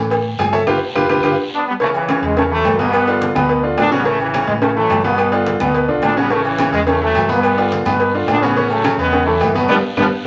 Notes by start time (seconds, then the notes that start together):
Already playing: A2 E3 A3 C#4
0.10 cowbell, high conga, low agogo, long guiro
0.25 high conga
0.39 G2 G#4 G#5, cowbell, high conga, low timbale, low agogo, short guiro, claves
0.53 A4 C#5 E5 A5, cowbell, high conga, short guiro
0.67 G1 F4 G4 B4, cowbell, high conga, high timbale, long guiro, claves
0.95 G1 F4 G4 B4, cowbell, high conga, high timbale, long guiro, claves
1.09 G1 F4 G4 B4, cowbell, high conga, high timbale, long guiro, claves
1.23 G1 F4 G4 B4, cowbell, high conga, high timbale, long guiro, claves
1.53 B3 D4
1.67 G3 B3
1.80 C#3 E3 A3 C#4 C#5, cowbell, high conga
1.94 C#3 E3, high conga, low agogo
2.08 C#3 C#4 C#5, cowbell, high conga, low timbale, low agogo, claves
2.22 E2 E3 G#3, cowbell, high conga
2.36 C#3 E3 A3 C#4 C#5, cowbell, high conga, low agogo
2.51 E3 F#3 A3 E4 A4, high conga
2.64 G2, cowbell, high conga, low timbale, low agogo, claves
2.79 B2 G3 B3 B4, cowbell, high conga
2.93 cowbell, high conga, low agogo, claves
3.07 D3 D4 F4, cowbell, high conga, low agogo
3.21 cowbell, high conga, low timbale
3.35 D2 B2 B3 B4, high conga, low conga, low agogo, claves
3.49 cowbell
3.63 D3 D4 F4, high conga
3.77 A1 B3 D4, cowbell, high conga, low timbale, low agogo, claves
3.91 C#3 G3 B3 C#4 C#5
4.05 C#3 E3 A3 C#4 C#5, cowbell, high conga
4.20 C#3 E3, high conga, low agogo
4.34 C#3 C#4 C#5, cowbell, high conga, low timbale, low agogo, claves
4.47 A2 E3 G#3, cowbell
4.62 C#3 E3 A3 C#4 C#5, cowbell, high conga, low agogo
4.76 E3 F#3 A3 E4 A4, high conga
4.90 G2, cowbell, high conga, low timbale, low agogo, claves
5.04 B2 G3 B3 B4, cowbell, high conga
5.18 cowbell, high conga, low agogo, claves
5.32 D3 D4 F4, cowbell, high conga, low agogo
5.46 cowbell, high conga, low timbale
5.60 D2 B2 B3 B4, high conga, low conga, low agogo, claves
5.75 cowbell
5.88 B1 D3 D4 F4, high conga
6.02 A1 B3 D4, cowbell, high conga, low timbale, low agogo, claves
6.17 C#3 G3 B3 C#4 C#5
6.30 C#3 E3 A3 C#4 C#5, cowbell, high conga, long guiro
6.45 C#3 E3, high conga, low agogo
6.59 C#3 C#4 C#5, cowbell, high conga, low timbale, low agogo, short guiro, claves
6.72 E2 E3 G#3, cowbell, high conga, short guiro
6.87 C#3 E3 A3 C#4 C#5, cowbell, high conga, low agogo, long guiro
7.01 E3 F#3 A3 E4 A4, high conga
7.15 G2, cowbell, high conga, low timbale, low agogo, short guiro, claves
7.29 B2 G3 B3 B4, cowbell, high conga, short guiro
7.43 cowbell, high conga, low agogo, long guiro, claves
7.57 D3 D4 F4, cowbell, high conga, low agogo
7.72 cowbell, high conga, low timbale, short guiro
7.85 G2 B2 B3 B4, high conga, low conga, low agogo, short guiro, claves
8.00 cowbell, high conga, long guiro
8.14 D3 D4 F4, high conga
8.27 A2 B3 D4, cowbell, high conga, low timbale, low agogo, short guiro, claves
8.42 C#3 E3 B3 C#4 C#5, short guiro
8.56 C#3 C#4 C#5, cowbell, high conga, long guiro
8.70 F#3 A3, high conga, low agogo
8.84 C#3 C#4 C#5, cowbell, high conga, low timbale, low agogo, short guiro, claves
8.98 E2 G#3 B3, cowbell, high conga, short guiro
9.13 C#3 C#4 C#5, cowbell, low agogo, long guiro
9.26 E3 F#3 A3 E4 A4, high conga
9.40 G2 E3 B3, cowbell, high conga, low timbale, low agogo, short guiro, claves
9.54 B2 F#3 A3 B3 B4, cowbell, high conga, short guiro
9.68 G1 F3 G3 B3 D4, cowbell, low conga, high timbale, long guiro, claves
9.97 G1 F3 G3 B3 D4, cowbell, low conga, high timbale, long guiro, claves